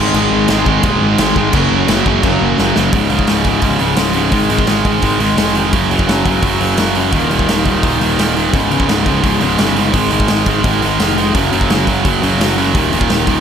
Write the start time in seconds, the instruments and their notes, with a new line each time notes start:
Already playing: overdriven electric guitar G#2 D#3, distorted electric guitar C4
0.00 overdriven electric guitar G#3, distorted electric guitar D#4 G#4
0.14 picked electric bass G#1, overdriven electric guitar G#2 D#3 G#3, crash
0.31 picked electric bass G#1
0.48 picked electric bass G#1, overdriven electric guitar G#2 D#3 G#3, distorted electric guitar C4 D#4 G#4, snare, crash
0.66 picked electric bass G#1, overdriven electric guitar G#2 D#3 G#3, kick
0.83 picked electric bass D#1, overdriven electric guitar G#2 D#3 G#3, kick, crash
1.01 picked electric bass G#1
1.18 picked electric bass G#1, overdriven electric guitar G#2 D#3 G#3, snare, crash
1.36 picked electric bass G#1, overdriven electric guitar G#2 D#3 G#3, kick
1.53 picked electric bass F#1, overdriven electric guitar F#2 C#3 F#3, distorted electric guitar A#3 C#4 F#4, kick, crash
1.70 picked electric bass F#1
1.88 picked electric bass F#1, overdriven electric guitar F#2 C#3 F#3, snare, crash
2.05 picked electric bass F#1, overdriven electric guitar F#2 C#3 F#3, distorted electric guitar A#3 C#4 F#4, kick
2.23 picked electric bass F#1, overdriven electric guitar F#2 C#3 F#3, kick, crash
2.41 picked electric bass F#1
2.58 picked electric bass F#1, overdriven electric guitar F#2 C#3 F#3, snare
2.76 picked electric bass F#1, overdriven electric guitar F#2 C#3 F#3, snare
2.93 picked electric bass C#1, overdriven electric guitar C#2 G#2 C#3, kick, open hi-hat
3.10 picked electric bass C#1, overdriven electric guitar C#2 G#2 C#3, open hi-hat
3.19 kick
3.27 picked electric bass C#1, overdriven electric guitar C#2 G#2 C#3, snare, open hi-hat
3.44 picked electric bass C#1, overdriven electric guitar C#2 G#2 C#3, kick, open hi-hat
3.62 picked electric bass C#1, overdriven electric guitar C#2 G#2 C#3, kick, open hi-hat
3.79 picked electric bass C#1, overdriven electric guitar C#2 G#2 C#3, open hi-hat
3.96 picked electric bass C#1, overdriven electric guitar C#2 G#2 C#3, snare, open hi-hat
4.13 overdriven electric guitar C#2 G#2 C#3, open hi-hat
4.32 picked electric bass G#1, overdriven electric guitar G#2 D#3 G#3, kick, open hi-hat
4.49 picked electric bass G#1, overdriven electric guitar G#2 D#3 G#3, open hi-hat
4.59 kick
4.66 picked electric bass G#1, overdriven electric guitar G#2 D#3 G#3, snare, open hi-hat
4.85 picked electric bass G#1, overdriven electric guitar G#2 D#3 G#3, kick, open hi-hat
5.02 picked electric bass G#1, overdriven electric guitar G#2 D#3 G#3, kick, open hi-hat
5.19 picked electric bass G#1, overdriven electric guitar G#2 D#3 G#3, open hi-hat
5.37 picked electric bass F1, overdriven electric guitar G#2 D#3 G#3, snare, open hi-hat
5.55 overdriven electric guitar G#2 D#3 G#3, open hi-hat
5.73 picked electric bass F#1, overdriven electric guitar F#2 C#3 F#3, kick, open hi-hat
5.90 picked electric bass F#1, overdriven electric guitar F#2 C#3 F#3, open hi-hat
5.99 kick
6.08 picked electric bass F#1, overdriven electric guitar F#2 C#3 F#3, snare, open hi-hat
6.25 picked electric bass F#1, overdriven electric guitar F#2 C#3 F#3, kick, open hi-hat
6.42 picked electric bass F#1, overdriven electric guitar F#2, kick, open hi-hat
6.46 overdriven electric guitar C#3 F#3
6.60 picked electric bass F#1, overdriven electric guitar F#2 C#3 F#3, open hi-hat
6.77 picked electric bass F#1, overdriven electric guitar F#2 C#3 F#3, snare, open hi-hat
6.95 overdriven electric guitar F#2 C#3 F#3, open hi-hat
7.12 picked electric bass D#1, overdriven electric guitar D#2 A#2 D#3, kick, open hi-hat
7.30 picked electric bass D#1, overdriven electric guitar D#2 A#2 D#3, open hi-hat
7.39 kick
7.48 picked electric bass D#1, overdriven electric guitar D#2 A#2 D#3, snare, open hi-hat
7.66 picked electric bass D#1, overdriven electric guitar D#2 A#2 D#3, kick, open hi-hat
7.83 picked electric bass D#1, overdriven electric guitar D#2 A#2 D#3, kick, open hi-hat
8.00 picked electric bass D#1, overdriven electric guitar D#2 A#2 D#3, open hi-hat
8.19 picked electric bass D#1, overdriven electric guitar D#2 A#2 D#3, snare, open hi-hat
8.36 overdriven electric guitar D#2 A#2 D#3, open hi-hat
8.53 picked electric bass C#1, overdriven electric guitar C#2 G#2 C#3, kick, open hi-hat
8.71 picked electric bass C#1, overdriven electric guitar C#2 G#2 C#3, open hi-hat
8.80 kick
8.89 picked electric bass C#1, overdriven electric guitar C#2 G#2 C#3, snare, open hi-hat
9.06 picked electric bass C#1, overdriven electric guitar C#2 G#2 C#3, kick, open hi-hat
9.24 picked electric bass C#1, overdriven electric guitar C#2 G#2 C#3, kick, open hi-hat
9.41 picked electric bass C#1, overdriven electric guitar C#2 G#2 C#3, open hi-hat
9.58 picked electric bass G1, overdriven electric guitar C#2 G#2 C#3, snare, open hi-hat
9.76 overdriven electric guitar C#2 G#2 C#3, open hi-hat
9.94 picked electric bass G#1, overdriven electric guitar G#2 D#3 G#3, kick, open hi-hat
10.11 picked electric bass G#1, overdriven electric guitar G#2 D#3 G#3, open hi-hat
10.20 kick
10.28 picked electric bass G#1, overdriven electric guitar G#2 D#3 G#3, snare, open hi-hat
10.46 picked electric bass G#1, overdriven electric guitar G#2 D#3 G#3, kick, open hi-hat
10.64 picked electric bass G#1, overdriven electric guitar G#2 D#3 G#3, kick, open hi-hat
10.82 picked electric bass G#1, overdriven electric guitar G#2 D#3 G#3, open hi-hat
10.99 picked electric bass F1, overdriven electric guitar G#2 D#3 G#3, snare, open hi-hat
11.16 overdriven electric guitar G#2 D#3 G#3, open hi-hat
11.35 picked electric bass F#1, overdriven electric guitar F#2 C#3 F#3, kick, open hi-hat
11.52 picked electric bass F#1, overdriven electric guitar F#2 C#3 F#3, open hi-hat
11.61 kick
11.70 picked electric bass F#1, overdriven electric guitar F#2 C#3 F#3, snare, open hi-hat
11.87 picked electric bass F#1, overdriven electric guitar F#2 C#3 F#3, kick, open hi-hat
12.05 picked electric bass F#1, overdriven electric guitar F#2 C#3 F#3, kick, open hi-hat
12.22 picked electric bass F#1, overdriven electric guitar F#2 C#3 F#3, open hi-hat
12.38 picked electric bass F#1, overdriven electric guitar F#2 C#3 F#3, snare, open hi-hat
12.57 overdriven electric guitar F#2 C#3 F#3, open hi-hat
12.75 picked electric bass D#1, overdriven electric guitar D#2 A#2 D#3, kick, open hi-hat
12.92 picked electric bass D#1, overdriven electric guitar D#2 A#2 D#3, open hi-hat
13.01 kick
13.10 picked electric bass D#1, overdriven electric guitar D#2 A#2 D#3, snare, open hi-hat
13.27 picked electric bass D#1, overdriven electric guitar D#2 A#2 D#3, kick, open hi-hat